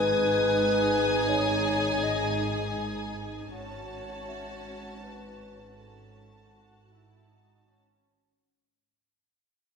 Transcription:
0.00 3.49 G#1 soft
0.00 3.49 G#2 soft
0.00 3.49 D#4 soft
0.00 3.49 G#4 soft
0.00 1.28 B4 medium
0.00 3.49 G#5 soft
0.00 3.12 D#6 soft
0.00 2.37 G#6 soft
1.29 2.05 C#5 medium
2.03 2.41 D#5 medium
3.53 7.79 G#1 medium
3.53 7.79 G#2 medium
3.53 5.74 C#4 soft
3.53 5.74 F#4 medium
3.53 5.05 C#5 medium
3.53 5.74 A5 medium
4.28 6.49 E5 soft
5.03 5.77 B4 medium
5.77 6.45 C#4 soft
5.77 7.79 F#4 soft
5.77 7.25 A4 soft
5.77 7.80 A5 soft
6.54 6.88 F#4 soft
6.91 7.28 E4 soft
7.28 7.66 D#4 soft
7.67 8.04 C#4 soft

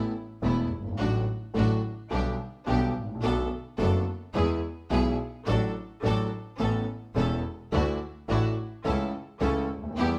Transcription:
0.00 0.11 A1 medium
0.00 0.11 A2 medium
0.00 0.11 E3 medium
0.00 0.11 A3 medium
0.00 0.11 B3 medium
0.00 0.11 E4 medium
0.00 0.11 A4 medium
0.42 0.66 E1 medium
0.42 0.67 E1 medium
0.42 0.67 E2 medium
0.42 0.66 E3 medium
0.42 0.66 A3 medium
0.42 0.67 A3 medium
0.42 0.67 B3 medium
0.42 0.67 E4 medium
0.42 0.67 A4 medium
0.71 0.98 G1 soft
0.78 0.85 F#1 soft
0.84 0.92 G1 medium
0.93 1.00 G#1 medium
0.98 1.23 A1 medium
0.98 1.23 A2 medium
0.98 1.23 D3 medium
0.98 1.23 F#3 soft
0.98 1.23 A3 medium
0.98 1.23 D4 medium
0.98 1.23 F#4 medium
1.54 1.78 A1 medium
1.54 1.79 A1 medium
1.54 1.78 A2 medium
1.54 1.78 D3 medium
1.54 1.78 F#3 medium
1.54 1.79 A3 medium
1.54 1.79 D4 medium
1.54 1.79 F#4 medium
2.11 2.35 B1 medium
2.11 2.35 B2 medium
2.11 2.35 D3 medium
2.11 2.35 G3 medium
2.11 2.35 B3 medium
2.11 2.35 D4 medium
2.11 2.35 G4 medium
2.66 2.90 B1 medium
2.66 2.91 B1 medium
2.66 2.91 B2 medium
2.66 2.90 D3 medium
2.66 2.91 G3 medium
2.66 2.90 B3 medium
2.66 2.91 B3 medium
2.66 2.91 D4 medium
2.66 2.91 G4 medium
2.95 3.22 A1 soft
3.02 3.09 G#1 soft
3.09 3.16 A1 medium
3.15 3.23 A#1 medium
3.23 3.47 B1 medium
3.23 3.47 B2 medium
3.23 3.46 D3 medium
3.23 3.47 A3 medium
3.23 3.46 B3 medium
3.23 3.47 B3 medium
3.23 3.47 D4 medium
3.23 3.47 F#4 medium
3.23 3.47 A4 medium
3.78 4.02 F#1 medium
3.78 4.02 F#2 medium
3.78 4.02 D3 medium
3.78 4.02 A3 medium
3.78 4.02 B3 medium
3.78 4.02 D4 medium
3.78 4.02 F#4 medium
3.78 4.03 A4 medium
4.34 4.58 E2 medium
4.34 4.59 E2 medium
4.34 4.58 E3 medium
4.34 4.58 G#3 medium
4.34 4.58 B3 medium
4.34 4.58 E4 medium
4.34 4.58 G#4 medium
4.34 4.59 G#4 medium
4.90 5.14 B1 medium
4.90 5.14 B2 medium
4.90 5.14 E3 medium
4.90 5.14 G#3 medium
4.90 5.14 B3 medium
4.90 5.14 E4 medium
4.90 5.14 G#4 medium
5.46 5.70 A1 medium
5.46 5.71 A1 medium
5.46 5.71 A2 medium
5.46 5.70 F#3 medium
5.46 5.70 A3 medium
5.46 5.70 D4 medium
5.46 5.71 D4 medium
5.46 5.71 F#4 medium
5.46 5.71 A4 medium
6.03 6.27 A1 medium
6.03 6.27 A2 medium
6.03 6.27 F#3 medium
6.03 6.27 A3 medium
6.03 6.27 D4 medium
6.03 6.27 F#4 medium
6.03 6.27 A4 medium
6.59 6.83 A1 medium
6.59 6.83 A2 medium
6.59 6.83 E3 medium
6.59 6.83 B3 medium
6.59 6.83 C#4 medium
6.59 6.83 A4 medium
6.59 6.84 A4 medium
7.15 7.40 E1 medium
7.15 7.40 E2 medium
7.15 7.40 E3 medium
7.15 7.40 B3 medium
7.15 7.40 C#4 medium
7.15 7.40 A4 medium
7.72 7.96 D2 medium
7.72 7.96 D3 medium
7.72 7.96 E3 medium
7.72 7.96 A3 medium
7.72 7.97 D4 medium
7.72 7.97 E4 medium
7.72 7.97 F#4 medium
8.28 8.53 A1 medium
8.28 8.53 A2 medium
8.28 8.53 E3 medium
8.28 8.53 A3 medium
8.28 8.53 D4 medium
8.28 8.53 E4 medium
8.28 8.53 F#4 medium
8.84 9.09 C#2 medium
8.84 9.09 C#3 medium
8.84 9.09 E3 medium
8.84 9.09 A3 medium
8.84 9.09 C#4 medium
8.84 9.09 E4 medium
8.84 9.09 A4 medium
9.40 9.65 C#2 medium
9.40 9.65 C#3 medium
9.40 9.65 E3 medium
9.40 9.65 A3 medium
9.40 9.65 C#4 medium
9.40 9.65 E4 medium
9.40 9.65 A4 medium
9.69 9.96 D2 soft
9.76 9.84 C#2 soft
9.83 9.91 D2 medium
9.91 9.98 D#2 medium
9.97 10.19 E2 medium
9.97 10.19 E3 medium
9.97 10.19 G3 medium
9.97 10.19 B3 medium
9.97 10.19 E4 medium
9.97 10.19 G4 medium

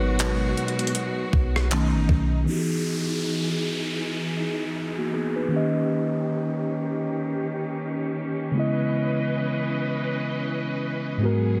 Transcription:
0.00 0.53 G#1 loud
0.00 1.69 B2 medium
0.00 1.67 F#3 medium
0.00 1.69 G#3 medium
0.00 1.68 B3 medium
0.00 1.68 D#4 medium
0.00 1.69 F#4 medium
0.00 1.73 F#4 medium
0.00 1.67 A#4 medium
0.00 1.67 B4 medium
0.00 1.73 C#5 medium
0.19 clap loud
0.19 closed hi-hat medium
0.57 closed hi-hat soft
0.68 closed hi-hat medium
0.79 closed hi-hat medium
0.87 closed hi-hat medium
0.95 closed hi-hat medium
1.33 1.95 B1 loud
1.33 kick medium
1.56 cross-stick medium
1.71 2.46 B2 medium
1.71 2.44 D#3 medium
1.71 2.46 A3 medium
1.71 2.44 A3 medium
1.71 2.44 C#4 medium
1.71 2.46 D#4 medium
1.71 clap loud
1.71 closed hi-hat medium
1.93 2.08 A1 loud
2.09 2.46 B1 loud
2.09 kick medium
2.44 5.46 E3 medium
2.44 5.48 E3 medium
2.44 4.71 B3 medium
2.44 5.48 D#4 medium
2.44 5.48 G#4 medium
2.44 downlifter medium
2.48 4.72 D#4 medium
2.48 4.73 F#4 medium
2.52 2.57 G4 medium
2.59 4.77 G#4 medium
4.98 5.13 A#3 medium
4.98 5.13 F#4 medium
5.14 5.35 B3 medium
5.14 5.34 G#4 medium
5.36 5.72 D#4 soft
5.36 5.72 B4 medium
5.48 8.49 D#3 medium
5.48 8.52 D#3 medium
5.48 8.50 A#3 medium
5.48 11.17 C#4 medium
5.48 8.51 C#4 medium
5.48 8.52 G4 medium
5.54 8.52 G4 medium
5.54 8.53 D#5 medium
8.51 11.15 C#3 medium
8.51 11.18 E3 medium
8.51 11.16 G#3 medium
8.51 11.18 B4 medium
8.51 11.18 D#5 medium
8.55 11.17 B3 medium
8.55 11.18 E4 medium
8.55 11.19 D#5 medium
11.17 11.60 G#2 medium
11.17 11.60 F#3 medium
11.17 11.60 G#3 medium
11.17 11.60 B3 medium
11.17 11.60 G#4 medium
11.23 11.60 F#4 medium
11.23 11.60 A#4 medium

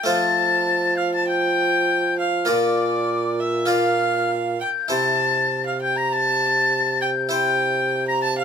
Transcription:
0.04 2.45 F3 medium
0.04 2.46 F3 medium
0.04 2.44 A3 medium
0.04 2.44 F4 medium
0.04 2.45 C5 medium
0.04 0.99 A6 loud
0.09 0.97 A5 medium
0.97 1.13 F5 medium
0.97 1.13 F6 loud
1.14 1.27 A5 medium
1.14 1.27 A6 medium
1.28 2.17 G5 loud
1.28 2.17 G6 loud
2.19 2.48 F5 medium
2.19 2.49 F6 medium
2.45 4.58 A#2 medium
2.45 4.59 A#2 medium
2.45 3.64 A#3 medium
2.45 3.65 F4 medium
2.45 3.66 D5 medium
2.45 3.41 D5 medium
2.51 3.39 D6 loud
3.39 3.70 E5 medium
3.39 3.69 E6 medium
3.66 4.85 A#3 medium
3.66 4.85 F4 medium
3.66 4.86 D5 medium
3.70 4.59 F5 medium
3.70 4.31 F6 loud
4.61 4.69 G5 medium
4.61 4.90 G6 loud
4.88 8.44 C3 medium
4.88 7.26 E4 medium
4.88 7.27 C5 medium
4.88 5.64 A5 medium
4.88 5.65 A6 loud
5.67 5.81 F5 medium
5.67 5.81 F6 medium
5.81 5.97 G5 medium
5.81 5.99 G6 loud
5.96 6.14 A#5 medium
5.96 6.11 A#6 loud
6.12 7.01 A5 loud
6.12 7.03 A6 loud
7.01 7.10 G5 medium
7.01 7.30 G6 loud
7.29 8.44 E4 medium
7.29 8.44 C5 medium
7.29 8.05 G5 medium
7.29 8.05 G6 loud
8.08 8.22 A#5 medium
8.08 8.14 A#6 loud
8.22 8.37 A5 loud
8.22 8.28 A6 loud
8.38 8.44 F5 medium
8.38 8.44 F6 loud

